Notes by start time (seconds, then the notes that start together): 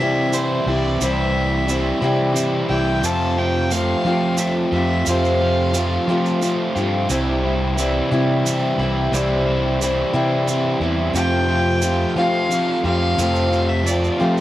Already playing: C3 E3 E5
0.00 C3 G3 C4 E4 G4
0.32 E3 G3 C4 E4 C5, shaker
0.66 C2 G3 C4 E4 G4 D5
1.00 C2 C3 E3 G3 C4 E4 E5, shaker
1.04 G4
1.34 G3 C4 E4
1.67 E3 G3 C4 E4, shaker
1.72 G4
2.01 C3 G3 C4 E4 G4
2.05 C3
2.34 E3 G3 C4 E4, shaker
2.69 C2 G3 C4 E4 G4 G5
3.01 F2 C3 F3 A3 C4 F4 A5, shaker
3.07 G4
3.37 F3 A3 C4 F4 G5
3.70 F3 A3 C4 F4 F5, shaker
3.75 G4
4.04 F3 A3 C4 F4 G4
4.37 F3 A3 C4 F4 E5, shaker
4.72 F2 F3 A3 C4 F4 G4 E5
5.06 F2 C3 F3 A3 C4 F4 F5, shaker
5.10 G4
5.24 shaker
5.41 F3 A3 C4 F4
5.73 F3 A3 C4 F4, shaker
5.79 G4
6.07 F3 A3 C4 F4 G4
6.26 shaker
6.42 F3 A3 C4 F4, shaker
6.75 G2 F3 A3 C4 F4 G4, shaker
6.81 C4
7.08 C2 C3 E3 G3 C4 E4, shaker
7.12 G4
7.42 G3 C4 E4
7.77 E3 G3 C4 E4, shaker
7.82 G4
8.11 C3 G3 C4 E4 G4
8.45 E3 G3 C4 E4, shaker
8.78 C2 G3 C4 E4 G4
9.12 C2 C3 E3 G3 C4 E4 G4, shaker
9.45 G3 C4 E4
9.79 E3 G3 C4 E4, shaker
9.85 G4
10.13 C3 G3 C4 E4 G4
10.47 E3 G3 C4 E4, shaker
10.80 E2 G3 C4 E4 G4
11.14 F2 C3 F3 A3 C4 F4 G4 G5, shaker
11.49 F3 A3 C4 F4
11.82 F3 A3 C4 F4 G4, shaker
12.16 F3 A3 C4 F4 G4 F5
12.49 F3 A3 C4 F4, shaker
12.83 F2 F3 A3 C4 F4 G4 F5
13.17 F2 C3 F3 A3 C4 F4, shaker
13.21 G4
13.35 shaker
13.50 F3 A3 C4 F4, shaker
13.68 E5
13.83 F3 A3 C4 F4 D5, shaker
13.91 G4
14.04 shaker
14.18 F3 A3 C4 F4 G4 C5